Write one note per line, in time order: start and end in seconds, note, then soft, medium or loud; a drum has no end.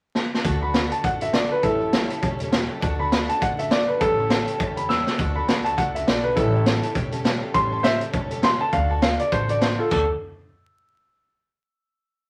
0.15 snare medium
0.34 snare medium
0.43 0.86 D2 loud
0.43 0.62 D3 medium
0.43 0.62 A3 medium
0.43 0.62 D4 loud
0.43 0.61 F#4 loud
0.43 0.60 A4 loud
0.43 0.54 D5 loud
0.43 0.55 F#5 loud
0.43 0.55 A5 loud
0.43 kick loud
0.43 closed hi-hat medium
0.60 0.74 D4 soft
0.60 0.74 F#4 medium
0.60 0.74 A4 medium
0.60 0.69 D5 medium
0.60 0.69 F#5 medium
0.60 0.70 A5 medium
0.60 0.91 B5 medium
0.73 0.91 D3 medium
0.73 0.92 A3 medium
0.73 0.92 D4 medium
0.73 0.91 F#4 medium
0.73 0.90 A4 medium
0.73 0.84 D5 medium
0.73 0.85 F#5 medium
0.73 0.85 B5 medium
0.73 snare loud
0.73 closed hi-hat medium
0.90 1.03 D4 soft
0.90 1.03 F#4 soft
0.90 1.04 A4 medium
0.90 0.98 D5 medium
0.90 0.99 F#5 medium
0.90 0.99 A5 medium
0.90 1.04 A5 medium
0.90 closed hi-hat medium
1.03 1.46 A1 medium
1.03 1.21 A3 medium
1.03 1.21 D4 medium
1.03 1.21 F#4 medium
1.03 1.19 A4 medium
1.03 1.14 D5 medium
1.03 1.14 F#5 medium
1.03 1.21 F#5 medium
1.03 1.15 A5 loud
1.03 kick loud
1.03 closed hi-hat medium
1.20 1.33 D4 soft
1.20 1.33 F#4 medium
1.20 1.34 A4 medium
1.20 1.29 D5 medium
1.20 1.34 E5 medium
1.20 1.29 F#5 medium
1.20 1.29 B5 medium
1.20 closed hi-hat medium
1.33 1.51 D3 medium
1.33 1.51 A3 medium
1.33 1.51 D4 medium
1.33 1.50 F#4 medium
1.33 1.48 A4 medium
1.33 1.44 D5 medium
1.33 1.51 D5 medium
1.33 1.44 F#5 medium
1.33 1.45 A5 medium
1.33 snare loud
1.33 closed hi-hat medium
1.50 1.64 D4 soft
1.50 1.64 F#4 soft
1.50 1.63 A4 medium
1.50 1.64 B4 loud
1.50 1.58 D5 medium
1.50 1.58 F#5 medium
1.50 1.59 A5 medium
1.62 2.05 A1 loud
1.62 1.81 A2 medium
1.62 1.81 E3 medium
1.62 1.81 G3 medium
1.62 1.81 C#4 medium
1.62 2.19 E4 medium
1.62 1.80 G4 medium
1.62 2.21 A4 medium
1.62 1.79 A4 loud
1.62 1.73 C#5 medium
1.62 1.74 E5 medium
1.62 1.74 A5 loud
1.62 kick loud
1.62 closed hi-hat medium
1.79 1.92 G3 soft
1.79 1.93 C#4 soft
1.79 1.93 G4 medium
1.79 1.93 A4 medium
1.79 1.88 C#5 medium
1.79 1.88 E5 medium
1.79 1.89 A5 medium
1.92 2.10 A2 medium
1.92 2.11 E3 medium
1.92 2.11 G3 medium
1.92 2.11 C#4 medium
1.92 2.10 G4 medium
1.92 2.09 A4 medium
1.92 2.03 C#5 medium
1.92 2.04 A5 medium
1.92 snare loud
1.92 closed hi-hat medium
2.10 2.21 G3 soft
2.10 2.23 C#4 soft
2.10 2.23 G4 medium
2.10 2.23 A4 medium
2.10 2.18 C#5 medium
2.10 2.18 E5 medium
2.10 2.18 A5 loud
2.10 closed hi-hat medium
2.22 2.64 E1 medium
2.22 2.40 G3 medium
2.22 2.41 C#4 medium
2.22 2.41 G4 medium
2.22 2.40 A4 medium
2.22 2.33 C#5 loud
2.22 2.33 E5 loud
2.22 2.34 A5 loud
2.22 kick loud
2.22 closed hi-hat medium
2.39 2.52 C#4 medium
2.39 2.53 G4 medium
2.39 2.53 A4 medium
2.39 2.47 C#5 medium
2.39 2.48 E5 medium
2.39 2.48 A5 medium
2.39 closed hi-hat medium
2.44 2.52 G3 medium
2.51 2.70 A2 medium
2.51 2.70 E3 medium
2.51 2.70 G3 medium
2.51 2.70 C#4 medium
2.51 2.69 G4 medium
2.51 2.69 A4 loud
2.51 2.62 C#5 loud
2.51 2.63 E5 medium
2.51 2.63 A5 loud
2.51 snare loud
2.51 closed hi-hat medium
2.68 2.82 G3 medium
2.68 2.82 C#4 soft
2.68 2.83 G4 medium
2.68 2.82 A4 medium
2.68 2.77 C#5 medium
2.68 2.77 E5 medium
2.68 2.77 A5 medium
2.80 3.24 D2 loud
2.80 2.99 D3 medium
2.80 3.00 A3 medium
2.80 3.00 D4 loud
2.80 2.99 F#4 medium
2.80 2.98 A4 loud
2.80 2.92 D5 loud
2.80 2.92 F#5 loud
2.80 2.92 A5 loud
2.80 kick loud
2.80 closed hi-hat medium
2.98 3.12 D4 soft
2.98 3.12 F#4 soft
2.98 3.12 A4 medium
2.98 3.06 D5 medium
2.98 3.06 F#5 medium
2.98 3.07 A5 medium
2.98 3.28 B5 medium
3.11 3.29 D3 medium
3.11 3.29 A3 medium
3.11 3.30 D4 medium
3.11 3.29 F#4 medium
3.11 3.27 A4 medium
3.11 3.22 D5 medium
3.11 3.22 F#5 medium
3.11 3.23 A5 medium
3.11 snare loud
3.11 closed hi-hat medium
3.28 3.41 D4 soft
3.28 3.42 F#4 soft
3.28 3.41 A4 medium
3.28 3.36 D5 medium
3.28 3.37 F#5 medium
3.28 3.41 A5 medium
3.28 3.37 A5 medium
3.28 closed hi-hat medium
3.40 3.83 A1 medium
3.40 3.58 A3 medium
3.40 3.59 D4 medium
3.40 3.59 F#4 medium
3.40 3.58 A4 medium
3.40 3.51 D5 loud
3.40 3.51 F#5 medium
3.40 3.59 F#5 medium
3.40 3.52 B5 loud
3.40 kick loud
3.40 closed hi-hat medium
3.58 3.70 D4 medium
3.58 3.71 F#4 medium
3.58 3.71 A4 medium
3.58 3.66 D5 medium
3.58 3.71 E5 medium
3.58 3.66 F#5 medium
3.58 3.67 A5 medium
3.58 closed hi-hat medium
3.70 3.88 D3 medium
3.70 3.88 A3 medium
3.70 3.89 D4 medium
3.70 3.88 F#4 medium
3.70 3.87 A4 medium
3.70 3.81 D5 medium
3.70 3.88 D5 loud
3.70 3.81 F#5 medium
3.70 3.82 A5 medium
3.70 snare loud
3.70 closed hi-hat medium
3.88 4.02 D4 soft
3.88 4.01 F#4 soft
3.88 4.01 A4 medium
3.88 4.00 B4 medium
3.88 3.96 D5 medium
3.88 3.96 F#5 medium
3.88 3.97 B5 medium
4.00 4.43 A1 loud
4.00 4.18 A2 medium
4.00 4.18 E3 medium
4.00 4.18 G3 medium
4.00 4.19 C#4 medium
4.00 4.18 G4 medium
4.00 4.58 A4 loud
4.00 4.17 A4 loud
4.00 4.11 C#5 medium
4.00 4.11 E5 medium
4.00 4.12 A5 loud
4.00 kick loud
4.00 closed hi-hat medium
4.18 4.30 G3 soft
4.18 4.31 C#4 medium
4.18 4.31 G4 medium
4.18 4.30 A4 medium
4.18 4.25 C#5 medium
4.18 4.26 E5 medium
4.18 4.26 B5 medium
4.29 4.48 A2 medium
4.29 4.48 E3 medium
4.29 4.48 G3 medium
4.29 4.48 C#4 medium
4.29 4.47 G4 medium
4.29 4.46 A4 medium
4.29 4.40 C#5 medium
4.29 4.41 E5 medium
4.29 4.41 A5 medium
4.29 snare loud
4.29 closed hi-hat medium
4.46 4.58 G3 medium
4.46 4.59 C#4 medium
4.46 4.60 G4 medium
4.46 4.60 A4 medium
4.46 4.54 C#5 medium
4.46 4.55 E5 medium
4.46 4.55 A5 loud
4.46 closed hi-hat medium
4.58 5.01 E2 medium
4.58 4.77 G3 medium
4.58 4.77 C#4 medium
4.58 4.76 G4 medium
4.58 4.75 A4 medium
4.58 4.69 C#5 loud
4.58 4.70 E5 loud
4.58 4.70 A5 loud
4.58 kick loud
4.58 closed hi-hat medium
4.76 4.89 G3 soft
4.76 4.90 C#4 medium
4.76 4.90 G4 medium
4.76 4.89 A4 medium
4.76 4.84 C#5 medium
4.76 4.84 E5 medium
4.76 4.85 A5 medium
4.76 4.89 B5 medium
4.76 closed hi-hat medium
4.88 5.07 A2 medium
4.88 5.07 E3 medium
4.88 5.07 G3 medium
4.88 5.07 C#4 medium
4.88 5.07 G4 medium
4.88 5.05 A4 medium
4.88 4.99 C#5 medium
4.88 5.00 E5 medium
4.88 5.00 A5 medium
4.88 5.18 E6 medium
4.88 snare medium
5.06 5.19 G3 soft
5.06 5.19 C#4 soft
5.06 5.20 G4 soft
5.06 5.19 A4 soft
5.06 5.13 C#5 medium
5.06 5.14 E5 soft
5.06 5.14 A5 medium
5.06 snare medium
5.18 5.40 D2 medium
5.18 5.36 D3 medium
5.18 5.36 A3 medium
5.18 5.36 D4 medium
5.18 5.36 F#4 medium
5.18 5.35 A4 medium
5.18 5.28 D5 loud
5.18 5.29 F#5 medium
5.18 5.29 A5 loud
5.18 kick loud
5.18 closed hi-hat medium
5.35 5.48 D4 soft
5.35 5.49 F#4 soft
5.35 5.48 A4 medium
5.35 5.43 D5 medium
5.35 5.43 F#5 medium
5.35 5.44 A5 medium
5.35 5.64 B5 medium
5.48 5.74 D2 medium
5.48 5.66 D3 medium
5.48 5.66 A3 medium
5.48 5.66 D4 medium
5.48 5.66 F#4 medium
5.48 5.65 A4 medium
5.48 5.58 D5 medium
5.48 5.59 F#5 medium
5.48 5.59 A5 medium
5.48 snare loud
5.48 closed hi-hat medium
5.64 5.79 F#4 soft
5.64 5.78 A4 medium
5.64 5.72 D5 medium
5.64 5.73 F#5 medium
5.64 5.77 A5 medium
5.64 5.73 B5 medium
5.64 closed hi-hat medium
5.69 5.78 D4 soft
5.77 6.03 C#2 medium
5.77 5.95 A3 medium
5.77 5.96 D4 medium
5.77 5.96 F#4 medium
5.77 5.88 D5 medium
5.77 5.94 F#5 medium
5.77 5.88 F#5 medium
5.77 5.89 A5 loud
5.77 kick loud
5.77 closed hi-hat medium
5.81 5.94 A4 medium
5.94 6.07 D4 soft
5.94 6.08 F#4 medium
5.94 6.07 A4 medium
5.94 6.02 D5 medium
5.94 6.07 E5 medium
5.94 6.03 F#5 medium
5.94 6.03 B5 medium
5.94 closed hi-hat medium
6.06 6.33 B1 medium
6.06 6.24 D3 medium
6.06 6.25 A3 medium
6.06 6.25 D4 medium
6.06 6.25 F#4 medium
6.06 6.23 A4 medium
6.06 6.17 D5 medium
6.06 6.24 D5 medium
6.06 6.17 F#5 medium
6.06 6.18 A5 medium
6.06 snare loud
6.06 closed hi-hat medium
6.23 6.37 F#4 soft
6.23 6.37 A4 medium
6.23 6.36 B4 loud
6.23 6.31 D5 medium
6.23 6.31 F#5 medium
6.23 6.32 B5 medium
6.27 6.37 D4 soft
6.35 6.78 A1 loud
6.35 6.54 A2 medium
6.35 6.54 E3 medium
6.35 6.54 G3 medium
6.35 6.54 C#4 loud
6.35 6.91 E4 medium
6.35 6.54 G4 medium
6.35 6.94 A4 medium
6.35 6.53 A4 loud
6.35 6.46 C#5 loud
6.35 6.47 E5 medium
6.35 6.47 A5 loud
6.35 kick loud
6.35 closed hi-hat medium
6.53 6.65 G3 soft
6.53 6.66 C#4 soft
6.53 6.66 G4 soft
6.53 6.66 A4 soft
6.53 6.61 C#5 medium
6.53 6.61 E5 medium
6.53 6.61 A5 medium
6.64 6.83 A2 medium
6.64 6.83 E3 medium
6.64 6.83 G3 medium
6.64 6.83 C#4 medium
6.64 6.83 G4 medium
6.64 6.75 C#5 medium
6.64 6.76 E5 medium
6.64 6.76 F#5 medium
6.64 snare loud
6.64 closed hi-hat medium
6.68 6.82 A4 medium
6.83 6.94 G3 medium
6.83 6.95 C#4 medium
6.83 6.96 G4 medium
6.83 6.95 A4 medium
6.83 6.90 C#5 medium
6.83 6.91 E5 medium
6.83 6.91 A5 loud
6.83 closed hi-hat medium
6.95 7.37 E1 medium
6.95 7.13 G3 medium
6.95 7.12 C#4 medium
6.95 7.12 G4 medium
6.95 7.10 A4 medium
6.95 7.06 C#5 loud
6.95 7.06 E5 loud
6.95 7.06 G5 loud
6.95 kick loud
6.95 closed hi-hat medium
7.11 7.24 G3 soft
7.11 7.24 C#4 medium
7.11 7.25 G4 medium
7.11 7.24 A4 medium
7.11 7.20 C#5 medium
7.11 7.20 E5 medium
7.11 7.21 A5 medium
7.11 closed hi-hat medium
7.24 7.42 A2 medium
7.24 7.42 E3 medium
7.24 7.42 G3 loud
7.24 7.42 C#4 medium
7.24 7.41 G4 medium
7.24 7.40 A4 loud
7.24 7.35 C#5 medium
7.24 7.35 E5 medium
7.24 7.36 A5 loud
7.24 snare loud
7.24 closed hi-hat medium
7.41 7.54 G3 soft
7.41 7.54 C#4 medium
7.41 7.54 G4 medium
7.41 7.54 A4 medium
7.41 7.49 C#5 medium
7.41 7.49 E5 medium
7.41 7.50 A5 medium
7.53 7.96 A1 loud
7.53 7.72 A2 medium
7.53 7.72 E3 medium
7.53 7.72 G3 loud
7.53 7.71 C#4 medium
7.53 7.71 G4 medium
7.53 7.70 A4 medium
7.53 7.64 C#5 medium
7.53 7.65 E5 medium
7.53 7.65 A5 loud
7.53 7.83 C6 loud
7.53 kick loud
7.53 closed hi-hat medium
7.71 7.83 G3 soft
7.71 7.84 C#4 soft
7.71 7.84 G4 medium
7.71 7.84 A4 medium
7.71 7.79 C#5 medium
7.71 7.79 E5 medium
7.71 7.80 A5 medium
7.83 8.01 A2 medium
7.83 8.01 E3 medium
7.83 8.01 G3 medium
7.83 8.01 C#4 medium
7.83 8.01 G4 medium
7.83 8.00 A4 medium
7.83 8.00 C5 loud
7.83 8.01 E5 loud
7.83 snare loud
7.83 closed hi-hat medium
8.00 8.12 G3 soft
8.00 8.12 C#4 medium
8.00 8.13 G4 medium
8.00 8.13 A4 medium
8.00 8.08 C#5 medium
8.00 8.09 E5 medium
8.00 8.09 A5 medium
8.00 closed hi-hat medium
8.13 8.55 E1 medium
8.13 8.30 G3 medium
8.13 8.31 C#4 medium
8.13 8.31 G4 medium
8.13 8.29 A4 medium
8.13 8.23 C#5 loud
8.13 8.24 E5 loud
8.13 8.24 A5 loud
8.13 kick loud
8.13 closed hi-hat medium
8.30 8.42 G3 medium
8.30 8.42 C#4 soft
8.30 8.43 G4 medium
8.30 8.43 A4 medium
8.30 8.38 C#5 medium
8.30 8.38 E5 medium
8.30 8.39 A5 medium
8.30 closed hi-hat medium
8.42 8.60 A2 medium
8.42 8.60 E3 medium
8.42 8.60 G3 medium
8.42 8.61 C#4 medium
8.42 8.60 G4 medium
8.42 8.59 A4 medium
8.42 8.53 C#5 medium
8.42 8.54 A5 medium
8.42 8.60 C6 loud
8.42 snare loud
8.42 closed hi-hat medium
8.59 8.73 G3 soft
8.59 8.73 C#4 soft
8.59 8.73 G4 medium
8.59 8.73 A4 medium
8.59 8.67 C#5 medium
8.59 8.68 E5 medium
8.59 8.68 F#5 medium
8.59 8.73 A5 loud
8.72 9.14 D2 loud
8.72 8.90 D3 medium
8.72 8.90 A3 medium
8.72 8.91 D4 medium
8.72 8.90 F#4 medium
8.72 8.89 A4 loud
8.72 8.83 D5 medium
8.72 8.90 F5 loud
8.72 8.83 F#5 medium
8.72 8.83 A5 loud
8.72 kick loud
8.72 closed hi-hat medium
8.89 9.02 D4 soft
8.89 9.03 F#4 medium
8.89 9.03 A4 medium
8.89 8.97 D5 medium
8.89 8.97 F#5 medium
8.89 8.98 A5 medium
8.89 9.03 A5 medium
9.02 9.20 D3 medium
9.02 9.20 A3 medium
9.02 9.20 D4 medium
9.02 9.19 F#4 medium
9.02 9.18 A4 medium
9.02 9.12 D5 medium
9.02 9.19 F5 loud
9.02 9.13 A5 medium
9.02 snare loud
9.02 closed hi-hat medium
9.19 9.31 D4 soft
9.19 9.32 F#4 medium
9.19 9.32 A4 medium
9.19 9.27 D5 medium
9.19 9.32 D5 loud
9.19 9.27 F#5 medium
9.19 9.28 A5 medium
9.19 closed hi-hat medium
9.32 9.74 A1 medium
9.32 9.49 A3 medium
9.32 9.49 D4 medium
9.32 9.48 F#4 medium
9.32 9.47 A4 medium
9.32 9.49 C5 loud
9.32 9.42 D5 loud
9.32 9.43 F#5 medium
9.32 9.43 A5 loud
9.32 kick loud
9.32 closed hi-hat medium
9.48 9.60 D4 medium
9.48 9.61 F#4 medium
9.48 9.61 A4 medium
9.48 9.56 D5 medium
9.48 9.62 D5 loud
9.48 9.57 F#5 medium
9.48 9.57 A5 medium
9.48 closed hi-hat medium
9.61 9.79 D3 medium
9.61 9.79 A3 medium
9.61 9.78 D4 medium
9.61 9.78 F#4 medium
9.61 9.76 A4 medium
9.61 9.78 C5 medium
9.61 9.72 D5 medium
9.61 9.72 F#5 medium
9.61 9.73 B5 medium
9.61 snare loud
9.61 closed hi-hat medium
9.77 9.90 D4 soft
9.77 9.90 F4 medium
9.77 9.91 F#4 soft
9.77 9.91 A4 medium
9.77 9.90 A4 medium
9.77 9.86 D5 medium
9.77 9.87 F#5 soft
9.77 9.87 A5 medium
9.90 10.08 D2 loud
9.90 10.05 D3 medium
9.90 10.05 A3 medium
9.90 10.05 D4 medium
9.90 10.06 F#4 medium
9.90 10.08 A4 medium
9.90 10.06 A4 medium
9.90 10.08 D5 medium
9.90 10.08 F#5 medium
9.90 10.07 A5 medium
9.90 kick loud
9.90 crash medium